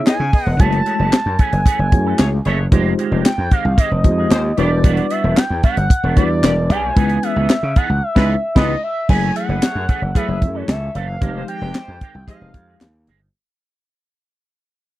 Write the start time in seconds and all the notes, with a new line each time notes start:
Already playing: B3 D#4 E4 G#4 C#5
0.07 B3 G#4 D#5 G#5, snare, clap, closed hi-hat
0.20 C#3
0.33 B3 G#4 D#5, kick, open hi-hat
0.46 E1 F#5
0.59 F#1 E3 G#3 A3 C#4 E4 F#4 G#4 C#5 A5, kick, closed hi-hat
0.72 closed hi-hat
0.86 E3 A3 C#4 G#4, closed hi-hat
0.99 F#1 E3 A3 C#4 G#4
1.12 muted slap bass stroke, snare, clap, closed hi-hat
1.26 F#2, muted clean electric guitar stroke
1.39 E3 A3 C#4 G#4 G#5, kick, closed hi-hat
1.52 F#1, muted clean electric guitar stroke, closed hi-hat
1.65 E3 A3 C#4 G#4, kick, closed hi-hat
1.79 F#1, muted clean electric guitar stroke
1.92 F#2 A3 E4 F#4 G#4 C#5, muted clean electric guitar stroke, kick, closed hi-hat
2.06 E3 A3 C#4 A4
2.19 C#2 A3 G#4 C#5, muted clean electric guitar stroke, snare, clap, closed hi-hat
2.32 muted clean electric guitar stroke
2.45 F#1 E3 A3 C#4 G#4 A4 C#5, closed hi-hat
2.59 muted clean electric guitar stroke
2.72 F1 D#3 G#3 C4 D#4 F4 G4 C5, kick, closed hi-hat
2.98 D#3 G#3 C4 G4, closed hi-hat
3.11 F1 D#3 G#3 C4 G4
3.25 G5, muted slap bass stroke, snare, clap, closed hi-hat
3.38 F2, muted clean electric guitar stroke
3.51 D#3 G#3 C4 G4 F5, kick, closed hi-hat
3.64 C2, muted clean electric guitar stroke
3.77 D#3 G#3 C4 G4 D#5, kick, closed hi-hat
3.91 F1, muted clean electric guitar stroke
4.04 F2 G#3 D#4 F4 G4 C5, muted clean electric guitar stroke, kick, closed hi-hat
4.17 D#3 G#3 C4 G#4
4.31 D#2 G#3 G4 C5, muted clean electric guitar stroke, snare, clap, closed hi-hat
4.44 muted clean electric guitar stroke
4.57 E1 G3 B3 D4 E4 F#4 G4 B4 D5, closed hi-hat
4.71 muted clean electric guitar stroke
4.84 G3 B3 D4 F#4, kick, closed hi-hat
4.97 closed hi-hat
5.10 G3 B3 D4 F#4 E5, closed hi-hat
5.24 E1 G3 B3 D4 F#4
5.37 G5, snare, clap, closed hi-hat
5.50 E2, muted clean electric guitar stroke
5.63 G3 B3 D4 F#4 F#5, kick, closed hi-hat
5.77 G1, muted clean electric guitar stroke, closed hi-hat
5.90 muted clean electric guitar stroke, kick, closed hi-hat
6.03 E1 G3 B3 D4 F#4
6.16 E2 G3 B3 D4 E4 F#4 B4 D5, kick, closed hi-hat
6.30 muted clean electric guitar stroke
6.43 E1 B3 G4 D5, muted clean electric guitar stroke, snare, clap, closed hi-hat
6.57 muted clean electric guitar stroke
6.69 B1 G3 B3 D4 G4 G#4 D5 G#5, closed hi-hat
6.83 muted clean electric guitar stroke
6.96 C#2 E3 G#3 B3 C#4 D#4 E4 G#4 B4, kick, closed hi-hat
7.09 closed hi-hat
7.23 E3 B3 D#4 G#4 E5, closed hi-hat
7.36 C#2 E3 B3 D#4 G#4
7.49 muted slap bass stroke, snare, clap, closed hi-hat
7.63 C#3, muted clean electric guitar stroke
7.76 E3 B3 D#4 G#4 F#5, kick, closed hi-hat
7.89 C#2, muted clean electric guitar stroke
8.03 E5
8.15 C#2 E3 G#3 B3 C#4 D#4 E4 G#4 B4, kick, snare, crash
8.56 C#2 E3 G#3 B3 C#4 D#4 E4 B4 D#5, kick, snare, crash
8.84 E5
9.09 F#1 E3 F#3 A3 C#4 E4 G#4 G#5, kick, crash
9.22 A3 G#4 C#5
9.35 E3 A3 C#4 G#4 F#5, closed hi-hat
9.49 F#1 E3 A3 B3 C#4 G#4 B4
9.62 A3 G#4 C#5, muted slap bass stroke, snare, clap, closed hi-hat
9.75 F#2, muted clean electric guitar stroke
9.88 E3 A3 C#4 G#4, kick, closed hi-hat
10.02 F#1, muted clean electric guitar stroke
10.15 E3 F#3 A3 B3 C#4 E4 G#4 B4 E5, kick, closed hi-hat
10.28 F#1, muted clean electric guitar stroke
10.41 F#2, muted clean electric guitar stroke, kick, closed hi-hat
10.54 E3 A3 C#4 A4 C#5
10.68 C#2 E3 C#4 A4 E5, muted clean electric guitar stroke, snare, clap, closed hi-hat
10.81 muted clean electric guitar stroke
10.95 F#1 E3 A3 C#4 A4 F5, closed hi-hat
11.08 muted clean electric guitar stroke
11.21 F1 D#3 F3 G#3 C4 D#4 G4, kick, closed hi-hat
11.35 G#3 G4 C5
11.48 D#3 G#3 C4 G4 G5, closed hi-hat
11.61 F1 D#3 G#3 C4 G4 B4
11.74 G#3 G4 C5, snare, clap, closed hi-hat
11.88 F2, muted clean electric guitar stroke
12.01 D#3 G#3 C4 G4, kick, closed hi-hat
12.14 C2, muted clean electric guitar stroke
12.27 D#3 F3 G#3 C4 D#4 G4 G#4 D#5 F5, kick, closed hi-hat
12.41 F1, muted clean electric guitar stroke
12.54 F2, muted clean electric guitar stroke, kick, closed hi-hat
12.67 D#3 G#3 C4 G#4
12.81 D#2, snare, clap, closed hi-hat
12.94 muted clean electric guitar stroke
13.07 G1 D#3 G#3 C4 G#4, closed hi-hat
13.21 muted clean electric guitar stroke